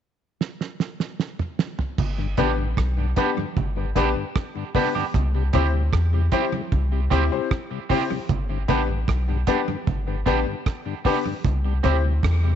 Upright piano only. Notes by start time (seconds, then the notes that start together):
2.38 B3 D4 G4 B4
3.16 B3 D4 G4 B4
3.77 G4 B4
3.95 B3 D4 G4 B4
4.75 B3 D4 G4 B4
5.53 C4 E4 G4 C5
6.32 C4 E4 G4 C5
7.11 C4 E4 G4 C5
7.31 C4 E4 G4 C5
7.90 C4 E4 G4 C5
8.10 G4 C5
8.68 B3 D4 G4 B4
9.47 B3 D4 G4 B4
10.07 G4 B4
10.26 B3 D4 G4 B4
11.05 B3 D4 G4 B4
11.83 C4 E4 G4 C5